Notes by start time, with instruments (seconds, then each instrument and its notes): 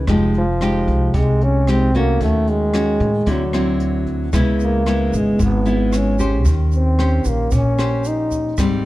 0.07 upright bass F1, nylon-string guitar F3 G#3 D#4 G4, kick, cross-stick, closed hi-hat
0.34 trombone F3, closed hi-hat
0.61 nylon-string guitar G#3 D#4 G4, cross-stick, closed hi-hat
0.88 upright bass C2, kick, closed hi-hat
1.14 upright bass C2, nylon-string guitar C3, trombone G#3, kick, closed hi-hat
1.41 trombone C#4, closed hi-hat
1.67 nylon-string guitar G#3 D#4 G4, trombone C4, cross-stick, closed hi-hat
1.94 nylon-string guitar A3 C#4 F#4, trombone A#3, kick, closed hi-hat
2.20 upright bass D#2, nylon-string guitar D#3, trombone A3, kick, closed hi-hat
2.47 trombone G#3, closed hi-hat
2.74 nylon-string guitar C#4 F#4, cross-stick, closed hi-hat
3.00 upright bass A2, kick, closed hi-hat
3.26 upright bass D2, nylon-string guitar D3 F#3 C4 E4, kick, closed hi-hat
3.30 trombone F#3
3.53 nylon-string guitar F#3 C4 E4, cross-stick, closed hi-hat
3.80 closed hi-hat
4.07 kick, closed hi-hat
4.33 upright bass C#2, nylon-string guitar C#3 G#3 B3 E4, kick, cross-stick, closed hi-hat, shaker
4.60 trombone A#3, closed hi-hat, shaker
4.86 nylon-string guitar G#3 B3 E4, cross-stick, closed hi-hat
5.13 upright bass G#1, kick, closed hi-hat, shaker
5.17 trombone G#3
5.39 upright bass G#1, nylon-string guitar G#2, trombone B3, kick, closed hi-hat, shaker
5.66 nylon-string guitar G#3 B3 E4, closed hi-hat, shaker
5.93 trombone C#4, cross-stick, closed hi-hat, shaker
6.19 nylon-string guitar C#4 G4 C5, kick, closed hi-hat, shaker
6.45 upright bass D#2, nylon-string guitar D#3, kick, closed hi-hat, shaker
6.72 closed hi-hat, shaker
6.76 trombone C4
6.99 nylon-string guitar C#4 G4 C5, cross-stick, closed hi-hat
7.25 upright bass A#1, trombone A#3, kick, closed hi-hat, shaker
7.51 upright bass A#1, nylon-string guitar A#2, trombone C#4, kick, closed hi-hat, shaker
7.78 nylon-string guitar C#4 G4 C5, cross-stick, closed hi-hat, shaker
8.04 trombone D#4, closed hi-hat, shaker
8.31 kick, closed hi-hat, shaker
8.58 upright bass G#1, nylon-string guitar G#2 G3 C4 D#4, kick, cross-stick, closed hi-hat, shaker